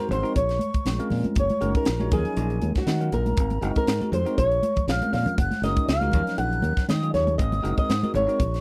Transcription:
Already playing: tine electric piano C4
0.00 tine electric piano G#3 D#4 F#4 C5, closed hi-hat
0.09 fingered electric bass G#1, nylon-string guitar C5, flute C6, closed hi-hat, low conga
0.22 tine electric piano G#3 C4 D#4 F#4 A#4, closed hi-hat
0.36 fingered electric bass A#1, nylon-string guitar C#5, flute C#6, kick, closed hi-hat
0.49 snare, closed hi-hat
0.59 closed hi-hat, high conga
0.74 kick, closed hi-hat
0.85 fingered electric bass A#1, snare, closed hi-hat, high conga
0.99 tine electric piano G#3 C4 C#4 F4 A#4, closed hi-hat
1.10 fingered electric bass A#2, open hi-hat, low conga
1.24 muted fingered electric bass stroke, closed hi-hat, high conga
1.35 fingered electric bass F#1, flute C#6, kick, closed hi-hat
1.40 nylon-string guitar C#5
1.50 closed hi-hat, high conga
1.61 fingered electric bass F#1, tine electric piano G#3 C#4 D#4 F#4 A#4, closed hi-hat
1.75 nylon-string guitar A#4, flute A#5, kick, closed hi-hat
1.85 fingered electric bass A#1, snare, closed hi-hat
1.99 tine electric piano G#3 C#4 D#4 F#4 C#5, closed hi-hat, high conga
2.11 fingered electric bass D#2, tine electric piano F#3 C#4 D#4 F4 A#4, nylon-string guitar G#4, kick, closed hi-hat, low conga
2.16 flute G#5
2.25 closed hi-hat
2.37 fingered electric bass A#1, closed hi-hat
2.50 closed hi-hat
2.62 fingered electric bass D#2, closed hi-hat, high conga
2.75 nylon-string guitar F#4, flute F#5, kick, snare, closed hi-hat
2.87 fingered electric bass D#3, snare, closed hi-hat, high conga
3.00 tine electric piano F#3 C#4 D#4 F4 A#4, closed hi-hat
3.12 fingered electric bass A#1, nylon-string guitar A#4, flute A#5, closed hi-hat, low conga
3.26 closed hi-hat, high conga
3.37 fingered electric bass G#1, kick, closed hi-hat
3.50 closed hi-hat, high conga
3.61 fingered electric bass F#1, tine electric piano G#3 C4 D#4 F#4 A#4, closed hi-hat
3.76 nylon-string guitar A#4, flute A#5, kick, closed hi-hat
3.87 fingered electric bass G#2, snare, closed hi-hat
4.00 tine electric piano G#3 C4 D#4 F#4 A#4, closed hi-hat, high conga
4.12 fingered electric bass F2, nylon-string guitar C5, closed hi-hat, low conga
4.17 flute C6
4.25 tine electric piano G#3 C4 D#4 F#4 A#4, closed hi-hat
4.38 fingered electric bass A#1, nylon-string guitar C#5, flute C#6, kick, closed hi-hat
4.52 closed hi-hat
4.63 closed hi-hat, high conga
4.76 kick, closed hi-hat, low conga
4.88 fingered electric bass A#1, nylon-string guitar F5, snare, closed hi-hat, high conga
4.92 flute F6
5.01 tine electric piano G#3 C4 C#4 F4 A#4, closed hi-hat, high conga
5.13 fingered electric bass A#2, nylon-string guitar F5, flute F6, snare, open hi-hat, low conga
5.26 muted fingered electric bass stroke, closed hi-hat, low conga
5.38 fingered electric bass F#1, nylon-string guitar F#5, flute F#6, kick, closed hi-hat
5.51 snare, closed hi-hat, high conga
5.62 fingered electric bass F#1, tine electric piano G#3 C#4 D#4 F#4 A#4, nylon-string guitar D#5, snare, closed hi-hat
5.66 flute D#6
5.76 kick, closed hi-hat
5.88 fingered electric bass C#2, nylon-string guitar F5, flute F6, snare, closed hi-hat
6.01 tine electric piano G#3 C#4 D#4 F#4 A#4, closed hi-hat, high conga
6.12 fingered electric bass D#2, tine electric piano F3 F#3 C#4 D#4 A#4, kick, closed hi-hat, low conga
6.27 snare, closed hi-hat
6.38 fingered electric bass A#1, nylon-string guitar F#5, flute F#6, closed hi-hat
6.53 closed hi-hat
6.62 fingered electric bass D#2, closed hi-hat, high conga
6.77 kick, snare, closed hi-hat
6.88 fingered electric bass D#3, nylon-string guitar D#5, flute D#6, snare, closed hi-hat, high conga
7.02 tine electric piano F#3 C#4 D#4 F4 G#4, closed hi-hat
7.14 fingered electric bass D#2, nylon-string guitar C#5, flute C#6, snare, closed hi-hat, low conga
7.27 closed hi-hat, high conga
7.38 fingered electric bass G#1, nylon-string guitar D#5, flute D#6, kick, closed hi-hat
7.52 closed hi-hat, high conga
7.62 fingered electric bass F#1, tine electric piano G#3 C4 D#4 F#4 A#4, closed hi-hat
7.77 nylon-string guitar D#5, flute D#6, kick, closed hi-hat
7.90 fingered electric bass G#2, snare, closed hi-hat
8.03 tine electric piano G#3 C4 D#4 F#4 A#4, closed hi-hat, high conga
8.14 fingered electric bass G#1, nylon-string guitar C#5, flute C#6, closed hi-hat, low conga
8.27 tine electric piano G#3 C4 D#4 F#4 A#4, closed hi-hat
8.40 fingered electric bass A#1, kick, closed hi-hat
8.54 snare, closed hi-hat

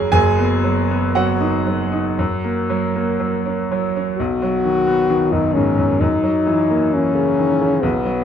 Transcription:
Already playing: grand piano C#3 F#3 A#3 C#4 G#4 A#4 B4 G#5 A#5 B5
0.12 grand piano F#1 F#2 G#4 G#5
0.38 grand piano B3
0.64 grand piano F#3
0.91 grand piano B3
1.15 grand piano F#3 F#4 F#5
1.40 grand piano D#4
1.67 grand piano F#3
1.92 grand piano D#4
2.19 grand piano F#2
2.44 grand piano A#3
2.70 grand piano F#3
2.96 grand piano A#3
3.20 grand piano F#3
3.46 grand piano C#4
3.72 grand piano F#3
3.96 grand piano C#4
4.18 grand piano B1, french horn F#4
4.42 grand piano F#3
4.64 grand piano D#3
4.87 grand piano B3
5.10 grand piano D#3
5.32 grand piano F#2, french horn D#4
5.54 grand piano G#2, french horn C#4
5.77 grand piano F#2
6.00 grand piano F#2, french horn D#4
6.24 grand piano F#3
6.47 grand piano E3
6.70 grand piano A#3
6.93 grand piano E3, french horn C#4
7.15 grand piano C#3
7.39 grand piano D#3
7.61 grand piano C#3
7.83 grand piano B1, french horn B3
8.05 grand piano F#3

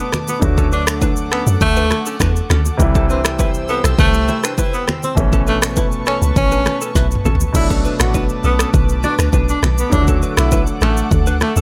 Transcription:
Already playing: grand piano B2 F#3 A3 D4, analog synth pad B4 A5 D6
0.00 tenor saxophone B3
0.12 finger snap, cross-stick, low bongo, low conga, shaker
0.28 tenor saxophone B3, low bongo, shaker
0.40 log drum bass D2, grand piano D3 F#3 A3, analog synth pad A4 F#5, kick, low conga, shaker
0.45 grand piano F#4
0.58 clean electric guitar C#4 A4, kick, shaker
0.72 tenor saxophone D4, clean electric guitar D4 B4, shaker
0.87 finger snap, cross-stick, shaker
1.01 clean electric guitar D4 B4, kick, high bongo, shaker
1.17 shaker
1.31 tenor saxophone B3, clean electric guitar C#4 A4, finger snap, cross-stick, shaker
1.47 log drum bass F#2, shaker
1.61 log drum bass D2, tenor saxophone A3, kick, low conga, shaker
1.76 clean electric guitar D4 B4, shaker
1.90 finger snap, cross-stick, low bongo, shaker
2.06 clean electric guitar C#4 A4, shaker
2.20 log drum bass E2, clean electric guitar D4 B4, finger snap, kick, cross-stick, high bongo, shaker
2.36 shaker
2.50 log drum bass D2, clean electric guitar C#4 A4, finger snap, cross-stick, low bongo, low conga, shaker
2.65 low bongo, shaker
2.77 log drum bass C2, grand piano C3 E3 G3, analog synth pad C5 G5 E6, kick, low conga, shaker
2.82 grand piano E4
2.95 clean electric guitar C4 A4, kick, shaker
3.10 tenor saxophone C4, clean electric guitar D4 B4, shaker
3.25 finger snap, cross-stick, shaker
3.39 clean electric guitar E4 B4, kick, high bongo, shaker
3.54 shaker
3.68 tenor saxophone B3, clean electric guitar C4 A4, shaker
3.84 log drum bass B1, clean electric guitar C4 A4, finger snap, cross-stick, shaker
3.99 log drum bass C2, tenor saxophone A3, clean electric guitar E4 B4, kick, low conga, shaker
4.14 shaker
4.28 clean electric guitar E4 C5, low bongo, shaker
4.44 clean electric guitar D4 B4, finger snap, cross-stick, shaker
4.58 clean electric guitar E4 B4, kick, high bongo, shaker
4.74 tenor saxophone B3, shaker
4.88 finger snap, cross-stick, low bongo, low conga, shaker
5.03 tenor saxophone C4, low bongo, shaker
5.15 log drum bass A1, grand piano B2 E3 A3, analog synth pad B4 A5 C#6, kick, low conga, shaker
5.20 grand piano C#4
5.33 clean electric guitar C#4 A4, kick, shaker
5.47 tenor saxophone A3, clean electric guitar D4 B4, shaker
5.62 finger snap, cross-stick, shaker
5.76 clean electric guitar E4 B4, kick, high bongo, shaker
5.92 shaker
6.06 tenor saxophone C#4, clean electric guitar C#4 A4, finger snap, cross-stick, shaker
6.22 log drum bass C#2, shaker
6.36 log drum bass A1, tenor saxophone C#4, kick, low conga, shaker
6.52 clean electric guitar D4 B4, shaker
6.66 finger snap, cross-stick, low bongo, shaker
6.81 clean electric guitar C#4 A4, shaker
6.95 log drum bass B1, clean electric guitar E4 B4, kick, snare, high bongo, shaker
7.11 mid tom, shaker
7.25 log drum bass A1, clean electric guitar C#4 A4, low bongo, low conga, shaker
7.35 floor tom
7.40 low bongo, shaker
7.52 log drum bass B1, grand piano B2 F#3 A3, tenor saxophone E4, analog synth pad B4 A5 D6, kick, crash, low conga, shaker
7.57 grand piano D4
7.70 clean electric guitar C#4 A4, kick, shaker
7.85 clean electric guitar D4 B4, shaker
8.00 log drum bass A1, tenor saxophone F#4, finger snap, cross-stick, shaker
8.14 clean electric guitar D4 B4, kick, high bongo, shaker
8.29 shaker
8.44 log drum bass B1, tenor saxophone B3, clean electric guitar C#4 A4, shaker
8.59 clean electric guitar C#4 A4, finger snap, cross-stick, shaker
8.74 log drum bass B1, clean electric guitar D4 B4, kick, low conga, shaker
8.89 shaker
9.03 tenor saxophone D4, clean electric guitar F#4 D5, high bongo, low bongo, shaker
9.19 log drum bass D2, clean electric guitar D4 B4, finger snap, cross-stick, shaker
9.33 log drum bass B1, clean electric guitar D4 B4, kick, high bongo, shaker
9.49 tenor saxophone D4, shaker
9.63 log drum bass B1, finger snap, cross-stick, low bongo, low conga, shaker
9.78 tenor saxophone B3, shaker
9.90 log drum bass D2, grand piano D3 F#3 A3, tenor saxophone D4, analog synth pad A4 F#5, kick, low conga, shaker
9.95 grand piano E4
10.01 grand piano F#4
10.08 clean electric guitar C#4 A4, kick, shaker
10.22 clean electric guitar D4 B4, shaker
10.37 log drum bass B1, tenor saxophone E4, finger snap, cross-stick, shaker
10.52 clean electric guitar D4 B4, kick, high bongo, shaker
10.67 shaker
10.81 log drum bass A1, tenor saxophone A3, clean electric guitar C#4 A4, finger snap, cross-stick, shaker
10.97 shaker
11.11 log drum bass D2, kick, low conga, shaker
11.27 clean electric guitar D4 B4, shaker
11.41 tenor saxophone A3, finger snap, cross-stick, high bongo, low bongo, shaker
11.56 log drum bass D2, clean electric guitar C#4 A4, shaker

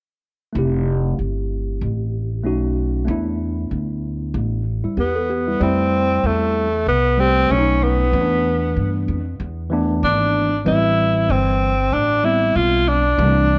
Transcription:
0.53 upright bass F1, tine electric piano A3 C4 E4
0.59 tine electric piano G4
1.19 upright bass G1
1.81 upright bass A1
2.44 upright bass B1, tine electric piano A3 C#4 D#4 F#4
3.05 upright bass E2, tine electric piano A3 B3
3.09 tine electric piano D4 E4
3.71 upright bass D2
4.34 upright bass A1
4.84 tine electric piano G3 E4, muted upright bass stroke
4.97 upright bass E2, tine electric piano B3 G4, tenor saxophone B3
5.15 tine electric piano A4
5.29 tine electric piano B3 G4
5.48 tine electric piano G3 E4
5.60 upright bass F2, tine electric piano G3 A3 C4 E4, tenor saxophone C4
6.24 upright bass E2, tenor saxophone A3
6.87 upright bass C2, tenor saxophone B3
7.18 tine electric piano G3 A3 C4 G4, tenor saxophone C4
7.49 upright bass B1, tine electric piano F#3 A3 C#4 D4, tenor saxophone C#4
7.58 tine electric piano D#4
7.83 tenor saxophone B3
8.12 upright bass E2, tine electric piano E3 A3 B3 C#4
8.22 tine electric piano D4
8.77 upright bass G2
9.08 upright bass F2
9.40 upright bass E2
9.70 tine electric piano E3 A3 B3 D4
10.03 upright bass G#1, tenor saxophone D4
10.65 upright bass A1, tine electric piano E3 G3 C4 B4, tenor saxophone E4
11.29 upright bass G1, tenor saxophone C4
11.92 upright bass A1, tenor saxophone D4
12.24 tine electric piano G3 B3 C4, tenor saxophone E4
12.55 upright bass B1, tenor saxophone F4
12.88 tenor saxophone D4
13.18 upright bass C2, tine electric piano E3 G3 A3 D4

